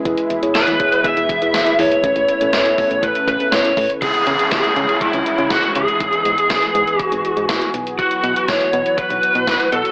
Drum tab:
HH |xxxxxxxxxxxxxxox|xxxxxxoxxxxxxxox|xxxxxxxxxxxxxxxx|xxxxxxxxxxxxxxxx|
SD |----o-------o---|----o-------o---|----o-------o---|----o-------o---|
BD |o-----o-o-o-----|o-----o-o-o---o-|o---o---o---o---|o---o---o---o---|

HH |xxxxxxxxxxxxxxxx|
SD |----o-------o---|
BD |o---o---o---o---|